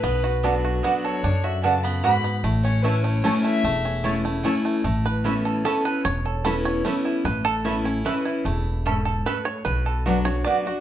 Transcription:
<<
  \new Staff \with { instrumentName = "Fiddle" } { \time 3/4 \key a \major \tempo 4 = 150 b'2 r8 cis''8~ | cis''8 e''8 a''8 b''8 b''4 | r8 cis''8 b'8 cis''4 e''8~ | e''4. r4. |
r2. | r2. | r2. | r2. |
r2. | }
  \new Staff \with { instrumentName = "Mandolin" } { \time 3/4 \key a \major r4 <b fis' d'' fis''>8 r8 <b fis' d'' fis''>8 r8 | r4 <b fis' d'' fis''>8 r8 <b fis' d'' fis''>8 r8 | r4 <a e' cis'' a''>8 r8 <a e' cis'' a''>8 r8 | r4 <a e' cis'' a''>8 r8 <a e' cis'' a''>8 r8 |
r4 <cis' a' e'' b''>8 r8 <cis' a' e'' b''>8 r8 | r4 <cis' a' e'' b''>8 r8 <cis' a' e'' b''>8 r8 | r4 <cis' a' e'' b''>8 r8 <cis' a' e'' b''>8 r8 | r4 <cis' a' e'' b''>8 r8 <cis' a' e'' b''>8 r8 |
r4 <b fis' d'' fis''>8 r8 <b fis' d'' fis''>8 r8 | }
  \new Staff \with { instrumentName = "Five-string banjo" } { \time 3/4 \key a \major << { r2. | r2. | r2. | r2. |
r8 b'4. a'8 b'8 | cis''4 a'8 cis''4. | b'8 a'4. b'4 | r4 a'4 b'8 cis''8 |
b'4 r8 cis''8 d''4 | } \\ { b8 fis'8 a'8 fis'8 b8 a'8 | d'8 fis'8 a'8 b8 fis'8 b8 | a8 cis'8 e'8 a8 cis'8 a8 | a8 cis'8 e'8 a8 cis'8 a8 |
a4 e'8 a'4. | r8 a'4. a8 e'8~ | e'4 e'8 cis'4 e'8 | a4. a'4. |
r8 a'8 fis'4. fis'8 | } >> }
  \new Staff \with { instrumentName = "Steel-string acoustic guitar" } { \time 3/4 \key a \major << { r4 <fis b d' fis'>4 <fis b d' fis'>4 | r2. | r4 <e a cis' e'>4 <e a cis' e'>4 | r4 <e a cis' e'>8 <cis' e'>8 <e a cis' e'>4 |
r4 <e b cis' e'>4 <e b cis' e'>4 | r4 <e b cis' e'>4 <e b cis' e'>4 | r4 <e b cis' e'>8 <cis' e'>8 <e b cis' e'>4 | r2. |
r4 <fis b d' fis'>8 <d' fis'>8 <fis b d' fis'>8 <d' fis'>8 | } \\ { b,2 r4 | fis,4 cis4 gis,4 | a,2 r4 | e,2 r4 |
a,2 r4 | e,2 r4 | a,2 r4 | e,4 gis,4 a,4 |
b,2 r4 | } >> }
  \new Staff \with { instrumentName = "Upright bass" } { \clef bass \time 3/4 \key a \major b,,2. | fis,2. | a,,2. | e,,2. |
a,,2. | e,,2. | a,,2. | e,,2. |
b,,2. | }
>>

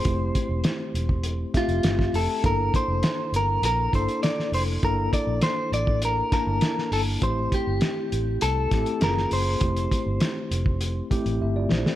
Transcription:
<<
  \new Staff \with { instrumentName = "Clean electric guitar" } { \time 4/4 \key g \dorian \tempo 4 = 100 c''2~ c''8 f'4 a'8 | bes'8 c''4 bes'8 bes'8 c''8 d''8 c''8 | bes'8 d''8 c''8 d''8 bes'8 bes'4 a'8 | c''8 g'4. a'4 ais'8 c''8~ |
c''2~ c''8 r4. | }
  \new Staff \with { instrumentName = "Tine electric piano" } { \time 4/4 \key g \dorian << { r1 | r1 | r1 | r1 |
r2. <g' e''>16 <f' d''>16 <e' c''>16 <c' a'>16 | } \\ { <a c' e' g'>4. r4 <a c' g' e''>4 r8 | <bes d' e' a'>4. r4 <bes d' e' a'>4 r8 | <bes d' e' a'>4. r4 <bes d' e' a''>4 r8 | <a c' e' g'>4. r4 <a c' e' g'>8 <ais cis' eis' gis'>4 |
<a c' e' g'>4. r4 <a c' e' g'>4 r8 | } >> }
  \new Staff \with { instrumentName = "Fingered electric bass" } { \clef bass \time 4/4 \key g \dorian f,,8 r16 e,,16 r8 e,,4 r16 f,,16 g,,8 f,,16 r16 | g,,8 r16 f,,16 r8 g,,8 bes,,8 g,,16 r8. f,,8 | g,,8 r16 bes,,16 r8 a,,4 r16 g,,16 r8 g,,8 | a,,8 r16 g,,16 r8 a,,8 c,8 a,,16 r16 fis,,8 fis,,8 |
f,,8 r16 g,,16 r8 f,,4 r16 a,,16 g,,8 bes,,16 r16 | }
  \new DrumStaff \with { instrumentName = "Drums" } \drummode { \time 4/4 <hh bd>8 <hh bd>8 <hh sn>8 hh16 bd16 hh8 <hh bd sn>16 hh16 <hh sn>16 <bd sn>16 hho8 | <hh bd>8 <hh bd>8 <hh sn>8 hh8 hh8 <hh bd>16 hh16 <hh sn>16 sn16 hho8 | <hh bd>8 <hh bd>8 <hh sn>8 hh16 bd16 hh8 <hh bd sn>8 <hh sn>16 sn16 hho8 | <hh bd>8 <hh bd>8 <hh sn>8 hh8 hh8 <hh bd sn>16 hh16 <hh sn>16 sn16 hho8 |
<hh bd>16 hh16 <hh bd>8 <hh sn>8 hh16 bd16 hh8 <hh bd>16 hh16 r8 sn16 sn16 | }
>>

